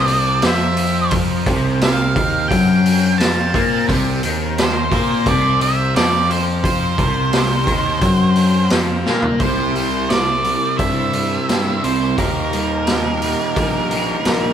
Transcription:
0.00 0.40 C2 medium
0.00 0.43 C3 loud
0.00 9.36 C4 medium
0.00 9.36 A#4 medium
0.00 0.41 D5 medium
0.00 9.36 G5 medium
0.07 open hi-hat medium
0.42 1.43 F2 medium
0.42 1.46 F3 loud
0.42 snare loud
0.42 open hi-hat medium
0.48 1.11 E5 medium
0.77 open hi-hat medium
1.11 kick loud
1.11 open hi-hat medium
1.46 2.12 C2 medium
1.46 2.16 C3 loud
1.46 kick loud
1.46 open hi-hat medium
1.81 2.48 F5 medium
1.81 snare loud
1.81 open hi-hat medium
2.16 2.48 D#2 loud
2.16 2.50 D#3 loud
2.16 kick loud
2.16 open hi-hat medium
2.48 3.16 F#2 medium
2.48 3.18 F#3 loud
2.48 3.14 G5 medium
2.48 kick loud
2.48 open hi-hat medium
2.86 open hi-hat medium
3.18 3.52 F2 medium
3.18 3.53 F3 loud
3.18 3.84 A5 loud
3.18 snare loud
3.18 open hi-hat medium
3.54 3.86 A#2 medium
3.54 3.87 A#3 loud
3.54 kick loud
3.54 open hi-hat medium
3.88 4.21 C2 medium
3.88 4.21 C3 loud
3.88 kick loud
3.88 open hi-hat medium
4.23 4.88 D#2 medium
4.23 4.91 D#3 loud
4.23 open hi-hat medium
4.58 5.29 C5 medium
4.58 snare loud
4.58 open hi-hat medium
4.92 5.24 A#2 medium
4.92 5.26 A#3 loud
4.92 kick loud
4.92 open hi-hat soft
5.26 5.91 C2 medium
5.26 5.95 C3 loud
5.26 5.62 D5 medium
5.26 kick loud
5.26 open hi-hat medium
5.61 5.96 E5 loud
5.61 open hi-hat medium
5.96 6.95 F2 medium
5.96 6.98 F3 loud
5.96 6.31 D5 medium
5.96 snare loud
5.96 open hi-hat medium
6.31 6.40 C5 medium
6.31 open hi-hat medium
6.64 8.67 C5 medium
6.64 kick medium
6.64 open hi-hat medium
6.98 7.63 C2 medium
6.98 7.67 C3 loud
6.98 kick loud
6.98 open hi-hat medium
7.33 snare loud
7.33 open hi-hat medium
7.67 8.00 D#2 medium
7.67 8.00 D#3 loud
7.67 kick loud
7.67 open hi-hat medium
8.01 8.67 F#2 medium
8.01 8.69 F#3 loud
8.01 kick loud
8.01 open hi-hat medium
8.36 open hi-hat medium
8.70 9.03 F2 medium
8.70 9.05 F3 loud
8.70 snare loud
8.70 open hi-hat medium
9.06 9.38 A#2 medium
9.06 9.39 A#3 medium
9.06 snare medium
9.22 floor tom medium
9.40 10.55 C2 medium
9.40 10.08 C3 medium
9.40 12.15 C4 medium
9.40 12.15 E4 medium
9.40 14.53 G4 medium
9.40 10.11 C5 medium
9.40 12.15 C5 medium
9.40 kick loud
9.40 open hi-hat medium
9.75 10.44 G3 medium
9.75 open hi-hat soft
10.09 10.78 C3 medium
10.09 10.78 D5 medium
10.09 snare loud
10.09 open hi-hat medium
10.44 11.13 G3 medium
10.44 open hi-hat soft
10.78 11.37 G2 medium
10.78 11.83 C3 medium
10.78 11.85 E5 medium
10.78 kick loud
10.78 open hi-hat medium
11.13 12.52 G3 medium
11.13 open hi-hat soft
11.48 11.78 G2 medium
11.48 12.17 C4 medium
11.48 snare loud
11.48 open hi-hat medium
11.84 12.13 C2 medium
11.84 12.18 C3 medium
11.84 12.18 C5 medium
11.84 open hi-hat medium
12.18 13.33 D#2 loud
12.18 12.86 D#3 medium
12.18 14.53 A#3 medium
12.18 14.53 D#4 medium
12.18 14.53 A#4 medium
12.18 kick loud
12.18 open hi-hat medium
12.53 13.23 G3 medium
12.53 open hi-hat soft
12.87 13.57 D#3 medium
12.87 snare loud
12.87 open hi-hat medium
13.22 13.92 G3 medium
13.22 open hi-hat medium
13.56 14.14 A#1 medium
13.56 14.53 D#3 medium
13.56 kick loud
13.56 open hi-hat medium
13.91 14.53 G3 medium
13.91 open hi-hat soft
14.25 14.53 A#1 medium
14.25 14.53 A#3 medium
14.25 snare loud
14.25 open hi-hat medium

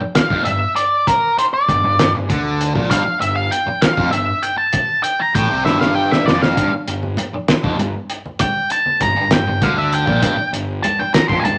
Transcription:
0.00 muted distorted electric guitar stroke medium
0.15 0.44 F5 loud
0.15 snare loud
0.15 closed hi-hat medium
0.30 0.45 F1 medium
0.30 0.45 F2 medium
0.30 kick loud
0.45 0.60 G1 medium
0.45 0.62 G2 medium
0.45 0.75 E5 medium
0.45 closed hi-hat medium
0.76 1.08 D5 medium
0.76 closed hi-hat medium
1.07 1.38 A#4 medium
1.07 kick loud
1.07 closed hi-hat medium
1.39 1.44 C5 medium
1.39 closed hi-hat medium
1.54 2.10 D5 medium
1.68 1.82 G1 medium
1.68 1.82 G2 medium
1.68 kick medium
1.68 closed hi-hat medium
1.83 1.98 G1 medium
1.83 1.98 G2 medium
1.99 2.13 G1 medium
1.99 2.13 G2 medium
1.99 snare loud
1.99 closed hi-hat loud
2.14 2.28 G1 medium
2.14 2.30 G2 medium
2.29 2.72 D2 loud
2.29 2.74 D3 medium
2.29 kick loud
2.29 closed hi-hat medium
2.61 closed hi-hat medium
2.74 2.90 A#1 medium
2.74 2.89 A#2 loud
2.74 kick loud
2.90 3.05 G1 medium
2.90 3.04 G2 loud
2.90 3.20 F5 medium
2.90 kick medium
2.90 closed hi-hat medium
3.05 muted distorted electric guitar stroke medium
3.05 muted fingered electric bass stroke soft
3.20 3.50 G1 medium
3.20 3.45 G2 medium
3.20 3.36 E5 medium
3.20 closed hi-hat medium
3.36 3.52 F5 medium
3.51 3.83 G5 medium
3.51 closed hi-hat medium
3.67 muted fingered electric bass stroke soft
3.67 muted distorted electric guitar stroke medium
3.81 4.10 F5 medium
3.81 snare loud
3.81 closed hi-hat medium
3.97 4.12 F1 medium
3.97 4.12 F2 loud
3.97 kick loud
4.11 4.27 G1 medium
4.11 4.28 G2 medium
4.11 4.44 E5 medium
4.11 closed hi-hat medium
4.43 4.57 G5 medium
4.43 closed hi-hat medium
4.58 5.03 A5 medium
4.73 kick medium
4.73 closed hi-hat medium
5.03 5.20 G5 loud
5.03 closed hi-hat medium
5.19 5.35 A#5 loud
5.35 5.49 A1 medium
5.35 5.50 A2 loud
5.35 5.65 G5 medium
5.35 kick medium
5.35 closed hi-hat medium
5.50 5.65 C2 medium
5.50 5.65 C3 loud
5.65 6.23 G1 medium
5.65 6.26 G2 loud
5.65 5.80 E5 medium
5.65 snare medium
5.81 5.95 F5 medium
5.81 snare medium
5.95 6.11 G5 medium
6.11 6.26 E5 medium
6.11 snare medium
6.26 6.55 F1 medium
6.26 6.56 F2 medium
6.26 6.42 D5 medium
6.26 snare medium
6.42 6.71 F5 medium
6.42 snare medium
6.57 6.72 G1 medium
6.57 6.71 G2 loud
6.57 kick medium
6.57 closed hi-hat medium
6.57 high conga medium
6.72 muted fingered electric bass stroke soft
6.72 muted distorted electric guitar stroke medium
6.88 7.16 G1 medium
6.88 7.12 G2 medium
6.88 closed hi-hat medium
7.03 low conga medium
7.17 closed hi-hat medium
7.17 high conga medium
7.17 low conga soft
7.33 muted fingered electric bass stroke soft
7.33 muted distorted electric guitar stroke medium
7.48 snare loud
7.48 closed hi-hat medium
7.48 low conga soft
7.63 7.78 F1 medium
7.63 7.78 F2 loud
7.63 kick loud
7.63 low conga medium
7.78 7.93 G1 medium
7.78 7.94 G2 medium
7.78 closed hi-hat medium
7.78 high conga medium
7.78 low conga soft
8.10 closed hi-hat medium
8.26 low conga medium
8.39 8.69 G5 medium
8.39 kick loud
8.39 closed hi-hat medium
8.39 high conga medium
8.70 9.02 A5 medium
8.70 closed hi-hat medium
8.86 low conga medium
9.00 9.15 G1 medium
9.00 9.15 G2 medium
9.00 9.32 A#5 loud
9.00 kick medium
9.00 closed hi-hat medium
9.00 high conga medium
9.00 low conga soft
9.16 9.30 G1 medium
9.16 9.31 G2 medium
9.31 9.46 G1 medium
9.31 9.46 G2 medium
9.31 9.63 G5 loud
9.31 snare loud
9.31 closed hi-hat medium
9.31 low conga soft
9.46 9.61 G1 medium
9.46 9.62 G2 medium
9.46 low conga medium
9.62 10.04 D2 medium
9.62 10.07 D3 loud
9.62 9.78 F5 medium
9.62 kick loud
9.62 closed hi-hat medium
9.62 high conga loud
9.62 low conga soft
9.78 9.93 E5 medium
9.93 10.50 G5 medium
9.93 closed hi-hat medium
10.07 10.22 A#1 medium
10.07 10.22 A#2 loud
10.07 kick loud
10.07 low conga medium
10.22 10.37 G1 medium
10.22 10.37 G2 loud
10.22 kick medium
10.22 closed hi-hat medium
10.22 high conga medium
10.38 muted fingered electric bass stroke soft
10.38 muted distorted electric guitar stroke medium
10.53 10.81 G1 medium
10.53 10.78 G2 medium
10.53 closed hi-hat medium
10.83 10.99 A5 medium
10.83 closed hi-hat medium
10.83 high conga medium
10.83 low conga soft
10.99 11.14 G5 medium
10.99 muted fingered electric bass stroke soft
10.99 muted distorted electric guitar stroke medium
11.14 11.28 A#5 medium
11.14 snare loud
11.14 closed hi-hat loud
11.14 low conga soft
11.28 11.43 F1 medium
11.28 11.44 F2 medium
11.28 11.39 C6 medium
11.28 kick loud
11.28 low conga medium
11.40 11.44 G#5 medium
11.40 11.58 A5 medium
11.44 11.58 G1 medium
11.44 11.58 G2 medium
11.44 closed hi-hat medium
11.44 high conga loud
11.44 low conga soft

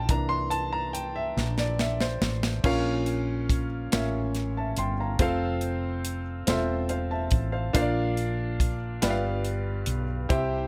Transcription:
0.00 0.11 E5 medium
0.00 0.11 F5 medium
0.00 0.12 G5 medium
0.00 0.11 A5 medium
0.00 0.10 A#5 medium
0.09 1.33 C2 loud
0.09 2.60 E3 medium
0.09 2.61 A#3 medium
0.09 2.61 D4 medium
0.09 0.32 A#5 loud
0.09 kick loud
0.09 closed hi-hat medium
0.29 0.52 C6 loud
0.50 0.55 A5 loud
0.50 closed hi-hat soft
0.73 0.95 A#5 medium
0.93 1.16 G5 medium
0.93 closed hi-hat medium
1.16 1.59 E5 medium
1.37 2.18 A#1 medium
1.37 snare medium
1.58 1.80 D5 medium
1.58 snare medium
1.79 1.99 E5 medium
1.79 snare medium
2.01 2.41 C5 medium
2.01 snare medium
2.21 2.61 A1 medium
2.21 snare medium
2.43 snare medium
2.63 3.87 A#1 loud
2.63 3.88 A#2 medium
2.63 3.65 C#4 loud
2.63 3.65 F4 medium
2.63 3.66 A#4 medium
2.63 3.66 C#5 medium
2.63 3.66 F5 loud
2.63 kick loud
2.63 crash loud
3.06 closed hi-hat soft
3.50 kick medium
3.50 closed hi-hat medium
3.92 4.74 A1 loud
3.92 4.93 C#4 medium
3.92 4.93 F4 medium
3.92 4.93 A#4 medium
3.92 4.94 C#5 medium
3.92 4.36 E5 medium
3.92 snare loud
3.92 closed hi-hat medium
4.35 snare soft
4.35 closed hi-hat medium
4.57 4.77 E5 medium
4.57 4.77 A5 medium
4.77 5.16 G1 medium
4.77 4.98 G5 medium
4.77 4.98 C6 medium
4.77 closed hi-hat medium
5.00 5.20 F5 medium
5.00 5.40 A#5 medium
5.19 6.43 F1 loud
5.19 6.20 C4 loud
5.19 6.21 F4 medium
5.19 6.21 A4 medium
5.19 6.21 C5 medium
5.19 6.22 F5 loud
5.19 kick loud
5.19 closed hi-hat loud
5.61 closed hi-hat soft
6.05 closed hi-hat medium
6.47 7.28 E1 medium
6.47 7.48 C4 medium
6.47 7.49 F4 medium
6.47 7.49 A4 medium
6.47 6.89 C5 medium
6.47 6.91 E5 medium
6.47 snare loud
6.47 closed hi-hat medium
6.89 7.10 C5 medium
6.89 7.10 F5 medium
6.89 closed hi-hat medium
7.11 7.52 E5 medium
7.11 7.51 A5 medium
7.31 7.71 A1 medium
7.31 kick loud
7.31 closed hi-hat medium
7.52 7.74 C5 medium
7.52 7.74 F5 medium
7.73 8.98 A#1 loud
7.73 8.98 A#2 medium
7.73 8.75 D4 loud
7.73 8.75 F4 medium
7.73 8.76 A#4 medium
7.73 7.82 C5 medium
7.73 8.76 F5 loud
7.73 kick loud
7.73 closed hi-hat loud
7.82 8.79 D5 medium
8.17 closed hi-hat soft
8.60 kick medium
8.60 closed hi-hat medium
9.02 9.84 G1 loud
9.02 10.26 G2 medium
9.02 10.03 F4 medium
9.02 10.03 G4 medium
9.02 10.03 B4 medium
9.02 10.04 D5 medium
9.02 9.10 E5 medium
9.02 snare loud
9.02 closed hi-hat loud
9.11 10.08 F5 medium
9.45 closed hi-hat medium
9.86 10.26 B1 medium
9.86 closed hi-hat medium
10.29 10.67 C2 loud
10.29 10.67 C3 medium
10.29 10.67 E4 loud
10.29 10.67 G4 loud
10.29 10.67 C5 loud
10.29 10.67 E5 medium
10.29 10.67 G5 loud
10.29 kick loud
10.29 closed hi-hat loud

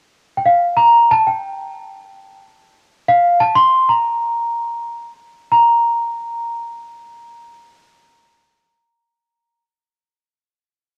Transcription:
0.37 0.44 G5 soft
0.46 0.78 F5 medium
0.77 1.11 A#5 medium
1.11 1.26 A5 medium
1.27 2.37 G5 soft
3.08 3.39 F5 medium
3.40 3.54 A5 medium
3.55 3.89 C6 medium
3.89 5.10 A#5 soft
5.52 9.60 A#5 medium

